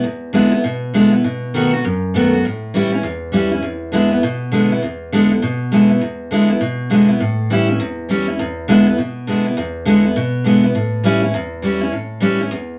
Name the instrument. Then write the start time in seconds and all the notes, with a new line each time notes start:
steel-string acoustic guitar
0.04 E2
0.33 D3 G#3 B3 E4
0.52 B3 E4
0.64 B2
0.94 D3 G#3 B3 E4
1.12 B3 E4
1.24 B2
1.54 D#3 A3 B3 F#4
1.73 B3 F#4
1.85 F#2
2.14 D#3 A3 B3 F#4
2.33 B3 F#4
2.45 A2
2.74 E3 G3 C#4 E4
2.92 C#4 E4
3.03 E2
3.32 E3 G3 C#4 E4
3.52 C#4 E4
3.62 E2
3.92 D3 G#3 B3 E4
4.11 B3 E4
4.23 B2
4.52 D3 G#3 B3 E4
4.72 B3 E4
4.82 E2
5.12 D3 G#3 B3 E4
5.31 B3 E4
5.42 B2
5.71 D3 G#3 B3 E4
5.90 B3 E4
6.01 E2
6.31 D3 G#3 B3 E4
6.50 B3 E4
6.61 B2
6.90 D3 G#3 B3 E4
7.09 B3 E4
7.20 A2
7.50 E3 G3 C#4 E4
7.69 C#4 E4
7.80 E2
8.09 E3 G3 C#4 E4
8.28 C#4 E4
8.39 E2
8.68 D3 G#3 B3 E4
8.86 B3 E4
8.98 B2
9.27 D3 G#3 B3 E4
9.46 B3 E4
9.57 E2
9.85 D3 G#3 B3 E4
10.04 B3 E4
10.16 B2
10.44 D3 G#3 B3 E4
10.64 B3 E4
10.75 A2
11.03 E3 G3 C#4 E4
11.22 C#4 E4
11.34 E2
11.62 E3 G3 C#4 E4
11.81 C#4 E4
11.92 A2
12.20 E3 G3 C#4 E4
12.40 C#4 E4
12.51 E2